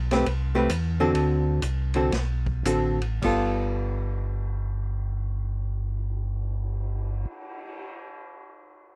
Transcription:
Already playing: tonewheel organ B1
0.11 hollow-body jazz guitar A3 C4 G4 B4, snare, ride
0.26 tonewheel organ C2, ride
0.55 hollow-body jazz guitar A3 C4 G4 B4
0.69 tonewheel organ E2, hi-hat pedal, ride
1.00 hollow-body jazz guitar D3 C4 F#4 A4
1.14 tonewheel organ D2, ride
1.62 tonewheel organ C2, hi-hat pedal, ride
1.94 hollow-body jazz guitar D3 C4 F#4 A4, ride
2.11 tonewheel organ B1, snare, ride
2.46 kick
2.64 tonewheel organ A1, hollow-body jazz guitar D3 C4 F#4 A4, hi-hat pedal, ride
3.01 ride
3.22 tonewheel organ G1, hollow-body jazz guitar G3 B3 F4 A4, kick, crash
3.61 cymbal swell

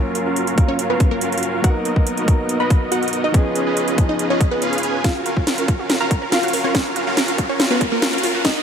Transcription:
Already playing: grand piano F#3 A#3 C#4 F4 A#4 F5, supersaw synth C#4 F4 F#4 A#4 F5
0.15 closed hi-hat
0.26 supersaw synth C#4 F4 F#4 A#4 F5
0.36 closed hi-hat
0.47 closed hi-hat
0.56 grand piano F#3 A#3 C#4 A#4 F5, supersaw synth C#4 F4 F#4 A#4 F5, kick, closed hi-hat
0.68 synth pluck C#4 C#5
0.79 closed hi-hat
0.90 synth pluck B3 B4, supersaw synth C#4 F4 F#4 A#4 F5
1.00 kick, closed hi-hat
1.11 synth pluck A#3 A#4
1.21 supersaw synth C#4 F4 F#4 A#4 F5, closed hi-hat
1.32 closed hi-hat
1.38 closed hi-hat
1.43 closed hi-hat
1.62 grand piano F#3 A#3 B3 D#4 A#4, supersaw synth B3 D#4 F#4 A#4 D#5, synth pluck F#4 F#5, kick, closed hi-hat
1.85 closed hi-hat
1.96 supersaw synth B3 D#4 F#4 A#4 D#5, kick
2.07 closed hi-hat
2.17 closed hi-hat
2.26 grand piano F#3 B3 D#4, supersaw synth B3 D#4 F#4 A#4 D#5, kick, closed hi-hat
2.30 grand piano A#4
2.49 closed hi-hat
2.60 supersaw synth B3 D#4 F#4 A#4 D#5, synth pluck B4 B5
2.70 kick, closed hi-hat
2.92 supersaw synth B3 D#4 F#4 A#4 D#5, synth pluck F#4 F#5, closed hi-hat
3.03 closed hi-hat
3.08 closed hi-hat
3.13 closed hi-hat
3.24 synth pluck D#4 D#5
3.32 grand piano F3 B3 C#4 D#4 G#4, supersaw synth C#4 F4 G#4 B4 D#5, kick, closed hi-hat
3.56 closed hi-hat
3.67 supersaw synth C#4 F4 G#4 B4 D#5
3.77 closed hi-hat
3.88 closed hi-hat
3.96 grand piano F3 B3 C#4 D#4, supersaw synth C#4 F4 G#4 B4 D#5, kick, closed hi-hat
4.00 grand piano G#4
4.09 synth pluck D#4 D#5
4.19 closed hi-hat
4.30 synth pluck C#4 C#5, supersaw synth C#4 F4 G#4 B4 D#5
4.41 kick, closed hi-hat
4.51 synth pluck B3 B4
4.62 supersaw synth C#4 F4 G#4 B4 F5, closed hi-hat
4.73 closed hi-hat
4.78 closed hi-hat
4.83 supersaw synth C#4 F4 G#4 B4 G#5, closed hi-hat
5.04 supersaw synth C#4 F4 F#4 A#4 F5, synth pluck F4 F5, synth arpeggio sound F4, kick, snare, closed hi-hat, riser
5.15 synth arpeggio sound F#4
5.26 synth arpeggio sound A#4, closed hi-hat
5.37 supersaw synth C#4 F4 F#4 A#4 F5, synth arpeggio sound F4, kick
5.47 synth arpeggio sound F4, snare, closed hi-hat
5.58 synth arpeggio sound A#4, closed hi-hat
5.68 supersaw synth C#4 F4 F#4 A#4 F5, synth arpeggio sound F4, kick, closed hi-hat
5.79 synth arpeggio sound F#4
5.90 synth arpeggio sound A#4, snare, closed hi-hat
6.01 supersaw synth C#4 F4 F#4 A#4 F5, synth arpeggio sound F4, synth pluck A#4 A#5
6.11 synth arpeggio sound F4, kick, closed hi-hat
6.22 synth arpeggio sound A#4
6.32 supersaw synth C#4 F4 F#4 A#4 F5, synth pluck F4 F5, synth arpeggio sound F4, snare, closed hi-hat
6.43 synth arpeggio sound F#4, closed hi-hat
6.48 closed hi-hat
6.53 synth arpeggio sound A#4, open hi-hat
6.64 synth pluck C#4 C#5, synth arpeggio sound F4
6.75 supersaw synth C#4 F4 F#4 A#4 F5, synth arpeggio sound F4, kick, snare, closed hi-hat
6.86 synth arpeggio sound A#4
6.96 synth arpeggio sound F4, closed hi-hat
7.07 supersaw synth C#4 F4 F#4 A#4 F5, synth arpeggio sound F#4
7.17 synth arpeggio sound A#4, snare, closed hi-hat
7.28 synth arpeggio sound F4, closed hi-hat
7.38 supersaw synth C#4 F4 F#4 A#4 F5, synth arpeggio sound F4, kick, closed hi-hat
7.49 synth pluck C#4 C#5, synth arpeggio sound A#4
7.60 synth arpeggio sound F4, snare, closed hi-hat
7.71 synth pluck B3 B4, supersaw synth C#4 F4 F#4 A#4 F5, synth arpeggio sound F#4
7.81 synth arpeggio sound A#4, kick, closed hi-hat
7.92 synth pluck A#3 A#4, synth arpeggio sound F4
8.02 supersaw synth C#4 F4 F#4 A#4 F5, synth arpeggio sound F4, snare, closed hi-hat
8.13 synth arpeggio sound A#4, closed hi-hat
8.18 closed hi-hat
8.23 synth arpeggio sound F4, open hi-hat
8.35 synth arpeggio sound F#4
8.45 supersaw synth B3 D#4 F#4 A#4 D#5, synth pluck D#4 D#5, synth arpeggio sound A#4, kick, snare, closed hi-hat
8.56 synth arpeggio sound D#4

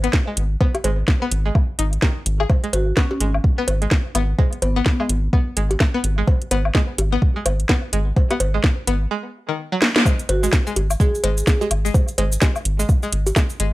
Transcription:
0.04 synth pluck B3, closed hi-hat
0.13 kick, snare
0.27 synth pluck G#3
0.37 analog synth bass G#1, closed hi-hat
0.61 synth pluck B3, kick, cowbell
0.75 closed hi-hat, cowbell, low woodblock
0.84 analog synth bass G#1, synth pluck G#3, closed hi-hat, cowbell
1.08 kick, snare
1.22 synth pluck B3
1.31 analog synth bass G#1, closed hi-hat
1.45 synth pluck G#3
1.55 kick, low woodblock
1.79 analog synth bass G#1, synth pluck D#4, closed hi-hat
1.93 closed hi-hat
2.02 synth pluck D#3, kick, snare, cowbell
2.26 analog synth bass G#1, closed hi-hat
2.40 synth pluck G#4, low woodblock
2.50 kick, cowbell, low woodblock
2.64 synth pluck G#3, closed hi-hat
2.73 analog synth bass G#1, vibraphone F#4, closed hi-hat, cowbell
2.97 synth pluck B3, vibraphone C#4, kick, snare
3.11 vibraphone C#4, cowbell
3.20 analog synth bass G#1, synth pluck G#3, closed hi-hat
3.34 low woodblock
3.44 kick
3.58 synth pluck B3
3.68 analog synth bass G#1, closed hi-hat, cowbell
3.82 synth pluck G#3, closed hi-hat
3.91 kick, snare
4.15 analog synth bass G#1, synth pluck B3, closed hi-hat, low woodblock
4.39 synth pluck G#3, kick, cowbell
4.53 closed hi-hat
4.62 analog synth bass G#1, vibraphone B3, closed hi-hat, cowbell
4.76 synth pluck B3
4.86 kick, snare
5.00 synth pluck G#3, low woodblock
5.09 analog synth bass G#1, closed hi-hat
5.33 synth pluck B3, kick
5.57 analog synth bass G#1, synth pluck G#3, closed hi-hat
5.71 closed hi-hat, cowbell
5.80 kick, snare, low woodblock
5.94 synth pluck B3
6.04 analog synth bass G#1, closed hi-hat
6.18 synth pluck G#3
6.28 kick, cowbell
6.42 closed hi-hat
6.51 analog synth bass G#1, synth pluck B3, closed hi-hat, cowbell
6.65 low woodblock
6.75 synth pluck G#3, kick, snare
6.98 analog synth bass G#1, closed hi-hat, cowbell
7.12 synth pluck B3
7.22 kick
7.36 synth pluck G#3
7.46 analog synth bass G#1, closed hi-hat, cowbell, low woodblock
7.60 closed hi-hat
7.69 synth pluck B3, kick, snare
7.93 analog synth bass G#1, synth pluck G#3, closed hi-hat
8.16 kick, cowbell
8.30 synth pluck B3, closed hi-hat, cowbell, low woodblock
8.40 analog synth bass G#1, closed hi-hat, cowbell
8.54 synth pluck G#3
8.64 kick, snare
8.87 analog synth bass G#1, synth pluck B3, closed hi-hat
9.11 synth pluck G#3
9.49 synth pluck D#3
9.72 synth pluck F#3
9.82 snare
9.96 snare
10.05 synth pluck G#3, kick, cowbell, cabasa, low woodblock
10.19 closed hi-hat, cabasa
10.29 analog synth bass G#1, vibraphone F#4, closed hi-hat, cowbell
10.43 synth pluck G#3, cabasa
10.53 kick, snare, cabasa
10.67 synth pluck G#3, cabasa
10.76 analog synth bass G#1, closed hi-hat, cowbell
10.90 cabasa, low woodblock
11.00 synth pluck G#3, vibraphone G#4, kick, cabasa
11.15 cabasa
11.24 analog synth bass G#1, synth pluck G#3, closed hi-hat, cowbell
11.37 closed hi-hat, cabasa
11.47 kick, snare, cabasa
11.61 synth pluck G#3, cowbell, cabasa
11.71 analog synth bass G#1, closed hi-hat, low woodblock
11.85 synth pluck G#3, cabasa
11.94 kick, cowbell, cabasa
12.08 closed hi-hat, cabasa
12.18 analog synth bass G#1, synth pluck G#3, closed hi-hat, cowbell
12.32 cabasa
12.42 synth pluck G#3, kick, snare, cowbell, cabasa
12.56 cabasa, low woodblock
12.65 analog synth bass G#1, closed hi-hat
12.79 synth pluck G#3, cabasa
12.89 kick, cabasa
13.03 synth pluck G#3, cabasa
13.12 analog synth bass G#1, closed hi-hat
13.27 closed hi-hat, cowbell, cabasa
13.36 synth pluck G#3, kick, snare, cabasa, low woodblock
13.50 cabasa
13.60 analog synth bass G#1, synth pluck G#3, closed hi-hat

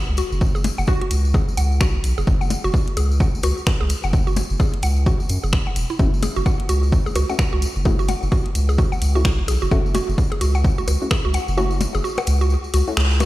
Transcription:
Already playing: sub drop
0.09 sub bass C#2
0.17 synth arpeggio sound F#4, closed hi-hat, tambourine
0.32 sub bass F#1, tambourine
0.41 kick, tambourine
0.55 synth arpeggio sound G#4, tambourine
0.64 closed hi-hat, tambourine, percussion blips
0.78 sub bass F#1, synth arpeggio sound F#5, tambourine
0.87 synth pluck F#4, kick, tambourine
1.01 synth arpeggio sound F#4, closed hi-hat
1.11 sub bass C#2, closed hi-hat, tambourine
1.25 tambourine
1.34 synth arpeggio sound G#4, kick, tambourine
1.48 tambourine
1.57 sub bass C#2, synth arpeggio sound F#5, closed hi-hat, tambourine
1.72 tambourine
1.81 sub bass B1, synth arpeggio sound F#4, finger snap, kick, tambourine
2.04 sub bass B1, closed hi-hat, tambourine
2.18 sub bass F#1, synth arpeggio sound G#4, tambourine
2.27 sub bass F#1, kick, tambourine
2.41 synth arpeggio sound F#5, tambourine
2.50 closed hi-hat, tambourine, percussion blips
2.64 sub bass F#1, synth arpeggio sound F#4, tambourine
2.74 kick, tambourine
2.88 closed hi-hat
2.97 sub bass C#2, synth arpeggio sound G#4, closed hi-hat, tambourine
3.11 tambourine
3.20 synth arpeggio sound F#5, kick, tambourine
3.34 sub bass F#1, tambourine
3.43 sub bass C#2, synth arpeggio sound F#4, closed hi-hat, tambourine, percussion blips
3.57 tambourine
3.66 finger snap, kick, tambourine, percussion blips
3.81 sub bass C#2, synth arpeggio sound G#4
3.89 closed hi-hat, tambourine
4.03 sub bass F#1, synth arpeggio sound F#5, tambourine
4.13 kick, tambourine
4.27 synth arpeggio sound F#4, tambourine
4.36 closed hi-hat, tambourine, percussion blips
4.50 sub bass F#1, tambourine
4.60 synth arpeggio sound G#4, kick, tambourine
4.74 closed hi-hat
4.82 sub bass C#2, synth arpeggio sound F#5, closed hi-hat, tambourine
4.96 tambourine
5.06 synth arpeggio sound F#4, kick, tambourine
5.20 tambourine
5.29 sub bass F#2, closed hi-hat, tambourine
5.43 sub bass F#1, synth arpeggio sound G#4, tambourine
5.53 finger snap, kick, tambourine
5.67 synth arpeggio sound F#5
5.76 sub bass E1, closed hi-hat, tambourine
5.90 synth arpeggio sound E4, tambourine
5.99 sub bass F#1, synth stab A3 C#4 E4 F#4, kick, tambourine
6.14 tambourine
6.22 synth arpeggio sound G#4, closed hi-hat, tambourine, percussion blips
6.36 sub bass F#1, synth arpeggio sound F#4, tambourine
6.46 synth arpeggio sound F#5, kick, tambourine
6.60 closed hi-hat
6.69 sub bass C#2, synth arpeggio sound F#4, closed hi-hat, tambourine
6.83 tambourine
6.92 kick, tambourine
7.06 sub bass F#1, synth arpeggio sound G#4, tambourine
7.16 sub bass C#2, synth arpeggio sound F#4, closed hi-hat, tambourine, percussion blips
7.29 synth stab A3 C#4 E4 F#4, synth arpeggio sound F#5, tambourine
7.39 finger snap, kick, tambourine, percussion blips
7.53 sub bass C#2, synth arpeggio sound F#4
7.62 closed hi-hat, tambourine
7.76 sub bass F#1, tambourine
7.85 synth stab A3 C#4 E4 F#4, synth arpeggio sound G#4, kick, tambourine
7.99 synth arpeggio sound F#4, tambourine
8.08 synth arpeggio sound F#5, closed hi-hat, tambourine, percussion blips
8.23 sub bass F#1, tambourine
8.32 synth arpeggio sound F#4, kick, tambourine
8.46 closed hi-hat
8.55 sub bass C#2, closed hi-hat, tambourine
8.69 synth arpeggio sound G#4, tambourine
8.78 synth arpeggio sound F#4, kick, tambourine
8.92 synth arpeggio sound F#5, tambourine
9.02 sub bass C#2, closed hi-hat, tambourine
9.15 synth stab A3 C#4 E4 F#4, synth arpeggio sound F#4, tambourine
9.25 sub bass B1, finger snap, kick, tambourine
9.48 sub bass B1, synth arpeggio sound G#4, closed hi-hat, tambourine
9.62 sub bass F#1, synth arpeggio sound F#4, tambourine
9.71 sub bass F#1, synth stab A3 C#4 E4 F#4, synth arpeggio sound F#5, kick, tambourine
9.86 tambourine
9.94 synth arpeggio sound F#4, closed hi-hat, tambourine, percussion blips
10.09 sub bass F#1, tambourine
10.18 kick, tambourine
10.32 synth arpeggio sound G#4, closed hi-hat
10.41 sub bass C#2, synth arpeggio sound F#4, closed hi-hat, tambourine
10.55 synth arpeggio sound F#5, tambourine
10.64 kick, tambourine
10.78 sub bass F#1, synth arpeggio sound F#4, tambourine
10.88 sub bass C#2, closed hi-hat, tambourine, percussion blips
11.02 synth stab A3 C#4 E4 F#4, tambourine
11.11 synth arpeggio sound G#4, finger snap, kick, tambourine, percussion blips
11.25 sub bass C#2, synth arpeggio sound F#4
11.34 synth arpeggio sound F#5, closed hi-hat, tambourine
11.48 sub bass F#1, tambourine
11.57 synth stab A3 C#4 E4 F#4, synth arpeggio sound F#4, tambourine
11.71 tambourine
11.81 closed hi-hat, tambourine, percussion blips
11.95 sub bass F#1, synth arpeggio sound G#4, tambourine
12.04 synth arpeggio sound F#4, tambourine
12.17 synth arpeggio sound F#5, closed hi-hat, tambourine, percussion blips
12.27 sub bass C#2, closed hi-hat, tambourine
12.41 synth arpeggio sound F#4, tambourine
12.50 tambourine
12.64 tambourine
12.74 sub bass C#2, synth arpeggio sound F#4, closed hi-hat, tambourine
12.87 synth stab A3 C#4 E4 F#4, tambourine
12.97 sub bass C#2, synth arpeggio sound G#4, finger snap, tambourine
13.11 tambourine
13.20 synth arpeggio sound F#4, closed hi-hat, tambourine, percussion blips

